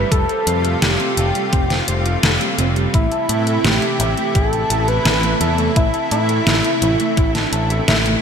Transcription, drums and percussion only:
0.12 kick loud
0.12 closed hi-hat medium
0.29 closed hi-hat soft
0.47 closed hi-hat medium
0.65 closed hi-hat soft
0.82 snare loud
0.82 closed hi-hat medium
1.00 closed hi-hat soft
1.17 closed hi-hat medium
1.35 closed hi-hat soft
1.53 kick loud
1.53 closed hi-hat medium
1.70 snare soft
1.70 closed hi-hat soft
1.88 closed hi-hat medium
2.06 closed hi-hat soft
2.23 snare loud
2.23 closed hi-hat medium
2.41 closed hi-hat soft
2.59 closed hi-hat medium
2.76 closed hi-hat soft
2.94 kick loud
2.94 closed hi-hat medium
3.12 closed hi-hat soft
3.29 closed hi-hat medium
3.47 closed hi-hat soft
3.65 snare loud
3.65 closed hi-hat medium
3.82 closed hi-hat soft
4.00 closed hi-hat medium
4.17 closed hi-hat soft
4.35 kick loud
4.35 closed hi-hat medium
4.53 closed hi-hat soft
4.70 closed hi-hat medium
4.88 closed hi-hat soft
5.05 snare loud
5.05 closed hi-hat medium
5.23 closed hi-hat soft
5.41 closed hi-hat medium
5.58 closed hi-hat soft
5.76 kick loud
5.76 closed hi-hat medium
5.94 closed hi-hat soft
6.11 closed hi-hat medium
6.29 closed hi-hat soft
6.47 snare loud
6.47 closed hi-hat medium
6.64 closed hi-hat soft
6.82 closed hi-hat medium
7.00 closed hi-hat soft
7.17 kick loud
7.17 closed hi-hat medium
7.35 snare soft
7.35 closed hi-hat soft
7.53 closed hi-hat medium
7.70 closed hi-hat soft
7.88 snare loud
7.88 closed hi-hat medium
8.06 closed hi-hat soft

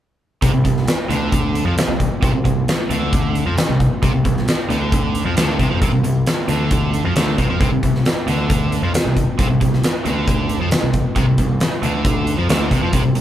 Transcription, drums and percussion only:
0.42 kick loud
0.42 closed hi-hat medium
0.65 kick medium
0.65 closed hi-hat medium
0.77 snare soft
0.88 snare loud
0.88 closed hi-hat medium
1.10 closed hi-hat medium
1.32 kick loud
1.32 closed hi-hat loud
1.55 closed hi-hat medium
1.78 snare loud
1.78 closed hi-hat loud
2.00 kick medium
2.00 closed hi-hat medium
2.23 kick loud
2.23 closed hi-hat medium
2.45 kick medium
2.45 closed hi-hat medium
2.68 snare loud
2.68 closed hi-hat medium
2.91 closed hi-hat medium
3.13 kick loud
3.13 closed hi-hat medium
3.35 closed hi-hat medium
3.58 snare loud
3.58 closed hi-hat loud
3.80 kick medium
3.80 closed hi-hat medium
4.03 kick loud
4.03 closed hi-hat medium
4.25 kick medium
4.25 closed hi-hat medium
4.37 snare soft
4.48 snare loud
4.48 closed hi-hat loud
4.70 closed hi-hat medium
4.92 kick loud
4.92 closed hi-hat loud
5.15 closed hi-hat medium
5.37 snare loud
5.37 closed hi-hat loud
5.59 kick medium
5.59 closed hi-hat medium
5.82 kick loud
5.82 closed hi-hat medium
6.04 closed hi-hat medium
6.26 snare loud
6.26 closed hi-hat medium
6.49 closed hi-hat medium
6.71 kick loud
6.71 closed hi-hat medium
6.94 closed hi-hat medium
7.16 snare loud
7.16 closed hi-hat medium
7.38 kick medium
7.38 closed hi-hat medium
7.61 kick loud
7.61 closed hi-hat medium
7.83 kick medium
7.83 closed hi-hat medium
7.95 snare soft
8.05 snare loud
8.05 closed hi-hat medium
8.28 closed hi-hat medium
8.50 kick loud
8.50 closed hi-hat loud
8.72 closed hi-hat medium
8.94 snare loud
8.94 closed hi-hat loud
9.17 kick medium
9.17 closed hi-hat medium
9.39 kick loud
9.39 closed hi-hat medium
9.61 kick medium
9.61 closed hi-hat medium
9.73 snare soft
9.83 snare medium
9.83 closed hi-hat medium
10.05 closed hi-hat medium
10.28 kick loud
10.28 closed hi-hat medium
10.49 closed hi-hat medium
10.71 snare loud
10.71 closed hi-hat medium
10.93 kick medium
10.93 closed hi-hat medium
11.16 kick medium
11.16 closed hi-hat medium
11.38 kick medium
11.38 closed hi-hat medium
11.60 snare loud
11.60 closed hi-hat medium
11.83 closed hi-hat medium
12.05 kick loud
12.05 closed hi-hat medium
12.27 closed hi-hat medium
12.49 snare loud
12.49 closed hi-hat loud
12.71 kick medium
12.71 closed hi-hat medium
12.93 kick medium
12.93 closed hi-hat medium
13.15 closed hi-hat medium

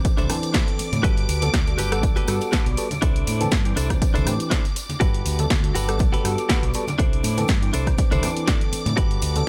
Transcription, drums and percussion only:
0.05 kick loud
0.05 closed hi-hat medium
0.05 tambourine soft
0.17 closed hi-hat soft
0.17 tambourine soft
0.17 high conga medium
0.29 cross-stick medium
0.29 open hi-hat loud
0.29 tambourine loud
0.29 low conga loud
0.43 closed hi-hat soft
0.43 tambourine soft
0.54 kick loud
0.54 snare loud
0.54 closed hi-hat medium
0.54 tambourine soft
0.54 high conga medium
0.68 closed hi-hat soft
0.79 open hi-hat medium
0.79 tambourine medium
0.93 closed hi-hat soft
0.93 tambourine soft
0.93 high conga medium
1.04 kick loud
1.04 closed hi-hat medium
1.04 tambourine soft
1.17 closed hi-hat soft
1.29 open hi-hat loud
1.29 tambourine loud
1.42 closed hi-hat medium
1.42 tambourine soft
1.42 high conga medium
1.54 kick loud
1.54 cross-stick medium
1.54 snare loud
1.54 closed hi-hat medium
1.54 tambourine medium
1.67 closed hi-hat soft
1.78 open hi-hat medium
1.78 tambourine medium
1.78 high conga medium
1.92 cross-stick medium
1.92 closed hi-hat medium
1.92 tambourine soft
2.03 kick loud
2.03 closed hi-hat medium
2.03 tambourine medium
2.16 closed hi-hat soft
2.16 tambourine soft
2.16 high conga medium
2.27 cross-stick medium
2.27 open hi-hat loud
2.27 tambourine loud
2.41 closed hi-hat soft
2.41 tambourine soft
2.52 kick loud
2.52 snare loud
2.52 closed hi-hat medium
2.52 tambourine medium
2.52 high conga medium
2.66 closed hi-hat soft
2.77 open hi-hat medium
2.77 tambourine medium
2.91 closed hi-hat soft
2.91 tambourine soft
2.91 high conga medium
2.91 low conga medium
3.02 kick loud
3.02 closed hi-hat medium
3.02 tambourine medium
3.16 closed hi-hat soft
3.27 open hi-hat loud
3.27 tambourine loud
3.27 low conga medium
3.40 closed hi-hat medium
3.40 tambourine soft
3.40 high conga medium
3.51 kick loud
3.51 cross-stick medium
3.51 snare loud
3.51 closed hi-hat medium
3.51 tambourine medium
3.65 closed hi-hat soft
3.77 open hi-hat medium
3.77 tambourine medium
3.90 kick medium
3.90 cross-stick medium
3.90 closed hi-hat medium
3.90 tambourine soft
3.90 low conga medium
4.02 kick loud
4.02 closed hi-hat medium
4.02 tambourine medium
4.15 closed hi-hat soft
4.15 tambourine soft
4.15 high conga medium
4.26 cross-stick medium
4.26 open hi-hat loud
4.26 tambourine loud
4.26 low conga medium
4.40 closed hi-hat soft
4.40 tambourine soft
4.51 kick loud
4.51 snare loud
4.51 closed hi-hat medium
4.51 tambourine medium
4.51 high conga medium
4.65 closed hi-hat soft
4.65 tambourine soft
4.76 open hi-hat medium
4.76 tambourine loud
4.89 closed hi-hat soft
4.89 tambourine soft
4.89 high conga medium
5.01 kick loud
5.01 closed hi-hat medium
5.01 tambourine soft
5.14 closed hi-hat soft
5.26 open hi-hat loud
5.26 tambourine medium
5.39 closed hi-hat medium
5.39 tambourine soft
5.39 high conga medium
5.50 kick loud
5.50 cross-stick medium
5.50 snare loud
5.50 closed hi-hat medium
5.50 tambourine medium
5.64 closed hi-hat soft
5.75 open hi-hat medium
5.75 tambourine medium
5.75 high conga medium
5.88 cross-stick medium
5.88 closed hi-hat medium
5.88 tambourine soft
5.99 kick loud
5.99 closed hi-hat medium
5.99 tambourine medium
6.13 closed hi-hat soft
6.13 tambourine soft
6.13 high conga loud
6.25 cross-stick medium
6.25 open hi-hat loud
6.25 tambourine loud
6.38 closed hi-hat soft
6.38 tambourine soft
6.49 kick loud
6.49 snare loud
6.49 closed hi-hat medium
6.49 tambourine medium
6.49 high conga medium
6.63 closed hi-hat soft
6.74 open hi-hat medium
6.74 tambourine medium
6.87 closed hi-hat soft
6.87 tambourine soft
6.87 high conga medium
6.87 low conga medium
6.99 kick loud
6.99 closed hi-hat medium
6.99 tambourine soft
7.13 closed hi-hat soft
7.23 open hi-hat loud
7.23 tambourine loud
7.23 low conga loud
7.37 closed hi-hat medium
7.37 tambourine soft
7.37 high conga medium
7.48 kick loud
7.48 cross-stick medium
7.48 snare loud
7.48 closed hi-hat medium
7.48 tambourine medium
7.63 closed hi-hat soft
7.74 open hi-hat loud
7.74 tambourine loud
7.87 kick medium
7.87 cross-stick medium
7.87 closed hi-hat medium
7.87 tambourine soft
7.98 kick loud
7.98 closed hi-hat medium
7.98 tambourine medium
8.12 closed hi-hat soft
8.12 tambourine soft
8.12 high conga medium
8.23 cross-stick medium
8.23 open hi-hat loud
8.23 tambourine medium
8.23 low conga loud
8.37 closed hi-hat soft
8.37 tambourine soft
8.48 kick loud
8.48 snare loud
8.48 closed hi-hat medium
8.48 tambourine medium
8.48 high conga medium
8.61 closed hi-hat soft
8.73 open hi-hat loud
8.73 tambourine medium
8.86 closed hi-hat soft
8.86 tambourine soft
8.86 high conga medium
8.98 kick loud
8.98 closed hi-hat medium
8.98 tambourine soft
9.11 closed hi-hat soft
9.22 open hi-hat loud
9.22 tambourine medium
9.36 closed hi-hat medium
9.36 tambourine soft
9.36 high conga loud

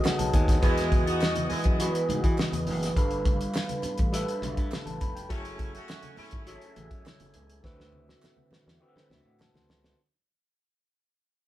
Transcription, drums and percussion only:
0.04 snare loud
0.04 clap medium
0.04 high conga medium
0.19 closed hi-hat medium
0.19 high conga medium
0.34 kick medium
0.34 closed hi-hat medium
0.34 muted conga soft
0.34 low conga medium
0.48 kick loud
0.48 snare soft
0.48 closed hi-hat medium
0.63 kick loud
0.63 closed hi-hat medium
0.63 muted conga soft
0.78 snare soft
0.78 closed hi-hat medium
0.91 kick loud
0.91 closed hi-hat medium
0.91 high conga medium
1.07 closed hi-hat medium
1.21 snare loud
1.21 clap medium
1.35 closed hi-hat medium
1.35 high conga medium
1.50 open hi-hat medium
1.50 muted conga soft
1.50 low conga medium
1.64 kick loud
1.64 closed hi-hat medium
1.79 closed hi-hat loud
1.79 muted conga soft
1.95 closed hi-hat medium
2.09 closed hi-hat medium
2.09 muted conga soft
2.09 high conga medium
2.24 kick loud
2.24 closed hi-hat medium
2.38 snare loud
2.38 clap medium
2.38 muted conga soft
2.38 high conga medium
2.52 closed hi-hat medium
2.52 high conga medium
2.67 open hi-hat soft
2.67 muted conga soft
2.67 low conga medium
2.83 snare soft
2.83 closed hi-hat medium
2.97 kick loud
2.97 closed hi-hat medium
2.97 muted conga soft
3.11 closed hi-hat medium
3.25 kick loud
3.25 closed hi-hat medium
3.25 muted conga soft
3.25 high conga medium
3.41 closed hi-hat medium
3.54 snare loud
3.54 clap medium
3.54 muted conga soft
3.69 closed hi-hat medium
3.69 high conga medium
3.82 closed hi-hat medium
3.82 muted conga soft
3.82 low conga medium
3.98 kick loud
3.98 closed hi-hat medium
4.13 closed hi-hat loud
4.13 muted conga soft
4.28 closed hi-hat medium
4.43 closed hi-hat medium
4.43 muted conga soft
4.43 high conga medium
4.57 kick loud
4.57 closed hi-hat medium
4.72 snare loud
4.72 clap medium
4.72 muted conga soft
4.72 high conga medium
4.87 closed hi-hat medium
4.87 high conga medium
5.01 kick medium
5.01 closed hi-hat medium
5.01 low conga medium
5.17 closed hi-hat medium
5.30 kick loud
5.30 closed hi-hat medium
5.45 closed hi-hat medium
5.58 kick loud
5.58 closed hi-hat medium
5.58 muted conga soft
5.58 high conga medium
5.75 closed hi-hat medium
5.89 snare loud
5.89 clap loud
6.03 closed hi-hat medium
6.03 high conga medium
6.16 open hi-hat medium
6.16 low conga medium
6.31 kick loud
6.31 closed hi-hat medium
6.46 closed hi-hat loud
6.46 muted conga soft
6.62 closed hi-hat medium
6.76 closed hi-hat medium
6.76 muted conga soft
6.76 high conga medium
6.91 kick loud
6.91 closed hi-hat medium
7.05 snare loud
7.05 clap medium
7.05 muted conga soft
7.05 high conga medium
7.20 closed hi-hat medium
7.20 high conga medium
7.34 closed hi-hat medium
7.34 low conga medium
7.50 closed hi-hat medium
7.64 kick loud
7.64 snare medium
7.80 snare medium
7.92 high conga medium
8.08 snare medium
8.08 high conga soft
8.22 snare medium
8.22 clap loud
8.22 muted conga soft
8.36 high conga medium
8.51 snare medium
8.51 muted conga soft
8.51 low conga medium
8.68 snare medium
8.81 muted conga soft
8.97 snare medium
9.11 snare loud
9.11 muted conga soft
9.11 high conga medium
9.40 snare loud
9.40 clap medium
9.40 muted conga soft
9.40 high conga medium
9.54 snare loud
9.54 high conga medium
9.69 snare loud
9.69 muted conga soft
9.69 low conga medium
9.84 snare loud

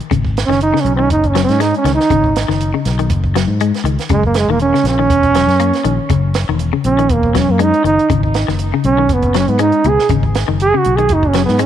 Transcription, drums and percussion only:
0.00 closed hi-hat soft
0.11 kick medium
0.11 closed hi-hat medium
0.25 kick medium
0.37 snare medium
0.37 closed hi-hat soft
0.51 snare soft
0.61 closed hi-hat medium
0.76 snare soft
0.86 closed hi-hat soft
1.10 kick medium
1.10 closed hi-hat medium
1.24 kick medium
1.24 closed hi-hat soft
1.35 snare medium
1.35 closed hi-hat medium
1.48 snare soft
1.48 closed hi-hat soft
1.60 snare soft
1.60 closed hi-hat medium
1.74 closed hi-hat soft
1.85 snare soft
1.85 closed hi-hat medium
2.00 snare soft
2.10 kick medium
2.10 closed hi-hat medium
2.24 kick medium
2.36 snare medium
2.36 closed hi-hat medium
2.50 snare soft
2.60 closed hi-hat medium
2.85 snare soft
2.85 closed hi-hat soft
2.99 closed hi-hat soft
3.09 kick medium
3.09 closed hi-hat medium
3.24 kick medium
3.35 snare medium
3.35 closed hi-hat soft
3.60 closed hi-hat medium
3.74 snare soft
3.74 closed hi-hat soft
3.85 closed hi-hat soft
3.98 snare soft
3.98 closed hi-hat soft
4.09 kick medium
4.09 closed hi-hat medium
4.23 kick medium
4.34 snare medium
4.34 closed hi-hat medium
4.59 closed hi-hat medium
4.75 snare soft
4.85 snare soft
4.85 closed hi-hat soft
5.10 kick medium
5.10 closed hi-hat medium
5.23 kick medium
5.23 closed hi-hat soft
5.34 snare medium
5.34 closed hi-hat medium
5.48 snare soft
5.48 closed hi-hat soft
5.60 closed hi-hat medium
5.73 snare soft
5.73 closed hi-hat soft
5.84 closed hi-hat medium
6.09 kick medium
6.09 closed hi-hat medium
6.34 snare medium
6.34 closed hi-hat medium
6.59 closed hi-hat medium
6.84 closed hi-hat medium
6.99 closed hi-hat soft
7.09 kick medium
7.09 closed hi-hat medium
7.23 kick medium
7.35 kick medium
7.35 snare medium
7.35 closed hi-hat medium
7.59 closed hi-hat medium
7.74 closed hi-hat soft
7.85 closed hi-hat soft
7.99 closed hi-hat soft
8.10 kick medium
8.10 closed hi-hat medium
8.23 kick medium
8.34 snare medium
8.34 closed hi-hat soft
8.49 snare soft
8.59 closed hi-hat medium
8.84 closed hi-hat soft
9.09 kick medium
9.09 closed hi-hat medium
9.22 kick medium
9.22 closed hi-hat soft
9.34 snare medium
9.34 closed hi-hat soft
9.48 closed hi-hat soft
9.58 closed hi-hat medium
9.72 closed hi-hat soft
9.84 closed hi-hat medium
9.99 snare soft
10.09 kick medium
10.09 closed hi-hat medium
10.23 kick medium
10.34 snare medium
10.34 closed hi-hat medium
10.60 closed hi-hat medium
10.84 closed hi-hat medium
10.98 closed hi-hat soft
11.09 kick medium
11.09 closed hi-hat medium
11.23 kick medium
11.33 snare medium
11.33 closed hi-hat medium
11.48 snare soft
11.59 closed hi-hat medium

